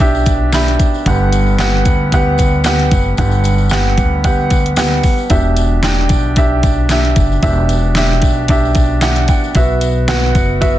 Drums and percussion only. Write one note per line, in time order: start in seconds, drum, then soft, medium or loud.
0.00 kick medium
0.00 closed hi-hat loud
0.00 tambourine soft
0.15 tambourine soft
0.26 kick medium
0.26 closed hi-hat medium
0.26 tambourine soft
0.52 snare medium
0.52 clap medium
0.52 closed hi-hat medium
0.52 tambourine medium
0.68 closed hi-hat soft
0.79 kick medium
0.79 closed hi-hat medium
0.79 tambourine soft
0.94 tambourine soft
1.06 kick medium
1.06 closed hi-hat medium
1.06 tambourine medium
1.32 closed hi-hat medium
1.32 tambourine medium
1.46 tambourine soft
1.58 snare loud
1.58 clap medium
1.58 closed hi-hat medium
1.58 tambourine medium
1.85 kick loud
1.85 closed hi-hat medium
1.85 tambourine soft
2.12 kick medium
2.12 closed hi-hat medium
2.12 tambourine soft
2.38 kick medium
2.38 closed hi-hat medium
2.38 tambourine soft
2.64 snare medium
2.64 clap medium
2.64 closed hi-hat medium
2.64 tambourine medium
2.79 closed hi-hat soft
2.91 kick medium
2.91 closed hi-hat medium
2.91 tambourine soft
3.17 kick loud
3.17 closed hi-hat medium
3.17 tambourine medium
3.31 tambourine soft
3.44 closed hi-hat medium
3.44 tambourine medium
3.58 tambourine soft
3.69 snare medium
3.69 clap medium
3.69 closed hi-hat medium
3.69 tambourine medium
3.98 kick loud
3.98 closed hi-hat medium
3.98 tambourine soft
4.24 kick medium
4.24 closed hi-hat medium
4.24 tambourine soft
4.50 kick medium
4.50 closed hi-hat medium
4.50 tambourine soft
4.66 closed hi-hat medium
4.76 snare medium
4.76 clap medium
4.76 closed hi-hat medium
4.76 tambourine medium
5.03 kick medium
5.03 open hi-hat medium
5.03 tambourine soft
5.18 tambourine soft
5.30 kick medium
5.30 closed hi-hat medium
5.30 tambourine medium
5.57 closed hi-hat medium
5.57 tambourine medium
5.83 snare loud
5.83 clap medium
5.83 closed hi-hat medium
5.83 tambourine medium
6.09 kick medium
6.09 closed hi-hat medium
6.09 tambourine soft
6.36 kick medium
6.36 closed hi-hat medium
6.36 tambourine soft
6.63 kick medium
6.63 closed hi-hat medium
6.63 tambourine soft
6.89 snare medium
6.89 clap medium
6.89 closed hi-hat medium
6.89 tambourine medium
7.05 closed hi-hat soft
7.16 kick medium
7.16 closed hi-hat medium
7.16 tambourine soft
7.32 tambourine soft
7.43 kick loud
7.43 closed hi-hat medium
7.43 tambourine soft
7.69 closed hi-hat medium
7.69 tambourine medium
7.95 snare loud
7.95 clap medium
7.95 closed hi-hat medium
7.95 tambourine medium
8.22 kick loud
8.22 closed hi-hat medium
8.22 tambourine soft
8.48 kick medium
8.48 closed hi-hat loud
8.48 tambourine soft
8.65 tambourine soft
8.75 kick medium
8.75 closed hi-hat medium
8.75 tambourine soft
9.01 snare medium
9.01 clap medium
9.01 closed hi-hat medium
9.01 tambourine medium
9.16 closed hi-hat soft
9.28 kick medium
9.28 closed hi-hat medium
9.28 tambourine soft
9.44 tambourine soft
9.55 kick medium
9.55 closed hi-hat medium
9.55 tambourine medium
9.81 closed hi-hat medium
9.81 tambourine medium
10.08 snare loud
10.08 clap medium
10.08 closed hi-hat medium
10.08 tambourine medium
10.35 kick medium
10.35 closed hi-hat medium
10.35 tambourine soft
10.62 kick medium
10.62 closed hi-hat medium
10.62 tambourine soft